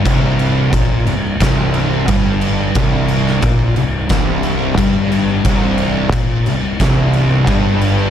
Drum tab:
CC |x-x-x-x-x-x-x-x-|x-x-x-x-x-x-x-x-|x-x-x-x-x-x-x-x-|
SD |--------o-------|---o----o-------|--------o-------|
BD |o---o---o---o---|o---o---o---o---|o---o---o---o---|